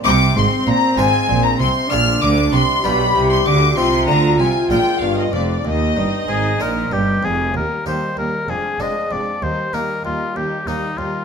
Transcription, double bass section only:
0.04 C2
0.35 G#1
0.66 A#1
0.97 G#1
1.28 A#1
1.59 C2
1.90 A#1
2.21 D2
2.52 C2
2.84 B1
3.14 C2
3.46 D2
3.77 C2
4.08 D2
4.39 C2
4.70 A#1
5.01 G1
5.33 F1
5.65 D#2
5.97 G1
6.28 G#1
6.60 A#1
6.92 G1
7.23 F1
7.55 D#2
7.86 D#2
8.17 D#2
8.49 F1
8.80 F1
9.11 F1
9.43 D#2
9.74 D#2
10.05 D#2
10.36 D#2
10.67 D#2
10.98 D#2

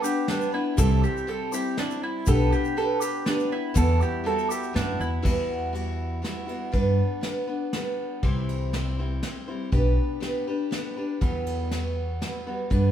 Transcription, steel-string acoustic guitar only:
0.02 B3 D4 B4
0.28 G3 B3 D4 B4
0.52 B3 D4 B4
0.77 C3 E3 G3 C4 E4 C5
1.27 G3 C4 E4 C5
1.52 G3 C4 E4 C5
1.78 G3 C4 E4 C5
2.26 B3 D4 G4 B4
2.77 B3 D4 G4 B4
3.26 B3 D4 G4 B4
3.74 E2 E3 G3 B3 E4 F#4
4.24 G3 B3 E4 F#4
4.73 G3 B3 E4 F#4
5.22 E2 E3 G3 B3 E4 F#4
5.73 G3 B3 E4 F#4
6.22 G3 B3 E4 F#4
6.47 G3 B3 E4 F#4
6.72 G3 B3 D4 B4
7.21 G3 B3 D4 B4
7.47 B3 D4 B4
7.74 G3 B3 D4 B4
8.23 C3 E3 G3 C4 E4 C5
8.73 G3 C4 E4 C5
8.99 G3 C4 E4 C5
9.24 G3 C4 E4 C5
9.48 G3 C4 E4 C5
9.72 B3 D4 G4 B4
10.20 B3 D4 G4 B4
10.47 D4 G4 B4
10.71 B3 D4 G4 B4
10.97 D4 G4 B4
11.21 E2 E3 F#3 G3 B3 B4
11.71 F#3 G3 B3 B4
12.21 F#3 G3 B3 B4
12.47 F#3 G3 B3 B4
12.70 G3 B3 D4 B4

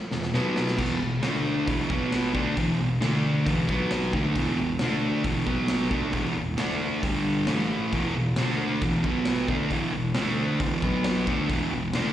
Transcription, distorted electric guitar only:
0.12 E2 B2
0.34 B2 F#3 B3
0.77 E2 B2 E3
0.99 E2 B2
1.21 D3 A3 D4
1.66 E2 B2 E3
1.89 B2 F#3 B3
2.33 D3 A3 D4
2.55 E2 B2 E3
2.80 E2 B2
3.00 D3 A3 D4
3.46 E2 B2 E3
3.69 B2 F#3 B3
4.14 D3 A3 D4
4.36 E2 B2 E3
4.59 E2 B2
4.81 D3 A3 D4
5.24 E2 B2 E3
5.46 B2 F#3 B3
5.91 D3 A3 D4
6.12 E2 B2 E3
6.34 E2 B2
6.57 D3 A3 D4
7.03 G2 D3 G3
7.47 A2 E3 A3
7.93 E2 B2 E3
8.15 E2 B2
8.37 D3 A3 D4
8.82 E2 B2 E3
9.04 B2 F#3 B3
9.48 D3 A3 D4
9.71 E2 B2 E3
9.93 E2 B2
10.15 D3 A3 D4
10.60 E2 B2 E3
10.82 B2 F#3 B3
11.27 D3 A3 D4
11.49 E2 B2 E3
11.73 E2 B2
11.95 D3 A3 D4

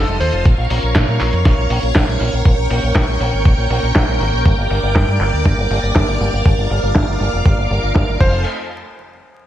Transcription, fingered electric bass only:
0.08 F1
0.20 D#2
0.33 F1
0.45 A#1
0.58 A#1
0.70 A#1
0.83 A#1
0.95 A#2
1.08 A#2
1.20 A#1
1.33 F2
1.45 A#1
1.58 A#1
1.70 A#1
1.83 A#1
1.95 A#1
2.08 A#1
2.21 A#1
2.33 A#1
2.45 A#1
2.58 A#1
2.71 A#1
2.83 A#1
2.95 A#1
3.08 A#1
3.21 A#1
3.33 G#1
3.46 A#1
3.58 A#1
3.70 A#1
3.83 A#1
3.96 A#1
4.08 A#1
4.21 G#1
4.33 A#1
4.46 G1
4.58 G1
4.70 G1
4.83 G1
4.96 G2
5.08 G2
5.20 G1
5.33 D2
5.45 G1
5.58 G1
5.71 G1
5.83 G1
5.96 G1
6.08 G1
6.21 G1
6.33 G1
6.46 G1
6.58 G1
6.71 G1
6.83 G1
6.96 G1
7.08 G1
7.20 G1
7.33 F1
7.46 G1
7.58 G1
7.70 G1
7.83 G1
7.95 G1
8.08 G1
8.21 F1

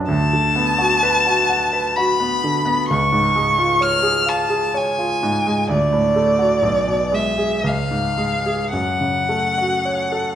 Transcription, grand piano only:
Already playing: F#2 D4 F#4 B4 D5
0.08 D2
0.33 D3
0.56 B3
0.78 F#4
1.03 B4
1.26 F#4
1.50 F#5
1.73 B4
1.97 F#4
2.20 B3
2.44 D3
2.65 B3
2.91 C#2
3.12 G#2
3.36 G#3
3.58 F4
3.81 C#5
4.03 G#4
4.26 F5
4.49 G#4
4.74 C#5
4.99 F4
5.23 G#2
5.47 G#3
5.69 D2
5.93 A2
6.16 A3
6.39 F#4
6.63 B1
6.88 B2
7.12 G#3
7.38 G#4
7.64 C#2
7.91 G#2
8.17 G#3
8.46 G#4
8.73 F#2
9.00 C#3
9.29 A3
9.58 F#4
9.85 C#5
10.12 A4

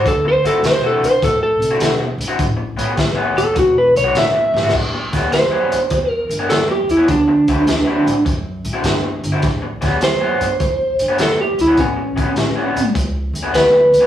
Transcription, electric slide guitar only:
0.08 A4
0.28 C5
0.47 A4
0.66 C5
0.86 A4
1.05 C5
1.24 A4
1.43 A4
3.38 A4
3.59 F#4
3.78 B4
3.97 C#5
4.18 E5
5.34 C5
6.10 A#4
6.50 A4
6.71 G4
6.91 E4
7.11 D4
10.04 C5
11.22 A4
11.41 G4
11.61 E4
11.80 C#4
13.55 B4

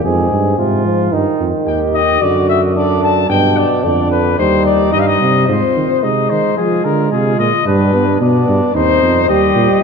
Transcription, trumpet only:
1.67 G5
1.95 D#5
2.22 D5
2.49 E5
2.77 D5
3.03 A5
3.30 G5
3.57 D5
3.83 D5
4.12 B4
4.38 C5
4.66 D5
4.92 D#5
5.00 F5
5.08 D#5
5.48 C5
6.03 D#5
6.30 C5
6.57 G#4
6.85 A#4
7.12 G#4
7.39 D#5
7.67 B4
8.21 D5
8.75 C5
9.29 D#5

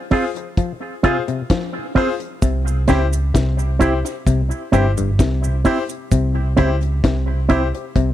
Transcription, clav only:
0.58 F3
1.04 C3
1.28 C3
1.50 F3
2.42 C3
2.88 C#3
3.34 C3
4.27 C3
4.73 G2
4.98 G2
5.19 C3
6.12 C3
6.57 C#3
7.04 C3
7.96 C3

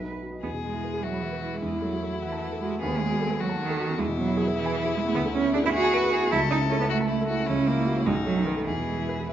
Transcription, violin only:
0.43 G#4
1.03 F#4
1.62 E4
2.81 G#4
3.40 F#4
3.99 E4
5.73 G#4
5.93 B4
6.12 G#4
6.32 A4
6.89 F#4
7.09 E4
7.27 F#4
7.47 E4
8.06 D#4
8.67 G#4
9.29 B4

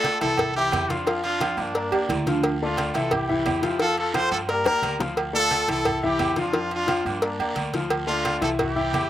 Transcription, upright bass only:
0.22 C2
0.72 F2
1.57 G2
1.92 E2
2.10 D2
2.95 C2
3.47 F2
4.32 G2
4.65 E2
4.82 D2
5.68 C2
6.20 F2
7.05 G2
7.39 E2
7.56 D2
8.42 C2
8.93 F2

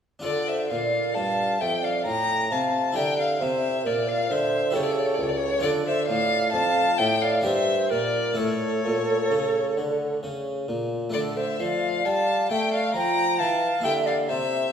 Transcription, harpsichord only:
0.19 D4 F4 A4
0.24 D3
0.71 A#2
1.17 G2
1.62 F2
2.07 A2
2.52 C3
2.92 E4 G4 A#4
2.97 D3
3.41 C3
3.86 A#2
4.31 D3
4.71 E4 G4 A4
4.76 C#3
5.19 C#2
5.59 D4 F4 A4
5.64 D3
6.09 A2
6.54 F2
7.00 A2
7.41 D4 G4 A#4
7.46 G2
7.92 A#2
8.34 A3 E4 A4
8.38 A2
8.86 A#2
9.31 C#3
9.77 D3
10.23 C#3
10.68 A#2
11.10 A3 D4 A4
11.14 D3
11.60 F3
12.06 G3
12.50 A3
12.94 F3
13.41 E3
13.80 A#3 E4 G4
13.85 D3
14.30 C3

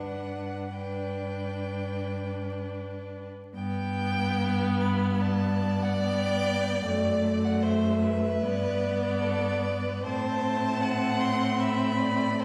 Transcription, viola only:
Already playing: D4
0.75 D4
3.56 B3
6.02 B3
6.85 A3
8.43 B3
10.05 C4
12.39 C4

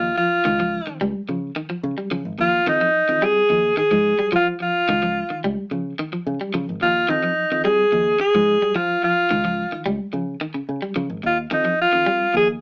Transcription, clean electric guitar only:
Already playing: F3
0.18 F3
0.45 D#3
0.60 F3
0.87 D#3
1.01 G3
1.29 F3
1.56 D#3
1.70 F3
1.98 G3
2.11 F3
2.39 F3
2.67 D#3
2.81 F3
3.09 D#3
3.22 G3
3.50 F3
3.77 D#3
3.91 F3
4.19 G3
4.32 F3
4.60 F3
4.89 D#3
5.03 F3
5.30 D#3
5.44 G3
5.71 F3
5.99 D#3
6.13 F3
6.41 G3
6.54 F3
6.81 F3
7.09 D#3
7.23 F3
7.52 D#3
7.65 G3
7.92 F3
8.20 muted clean electric guitar stroke
8.35 F3
8.62 G3
8.76 F3
9.03 F3
9.31 D#3
9.45 F3
9.72 D#3
9.86 G3
10.13 F3
10.41 D#3
10.54 C#3
10.82 G3
10.96 F3
11.23 muted clean electric guitar stroke
11.51 D#3
11.65 F3
11.93 D#3
12.06 G3
12.34 F3

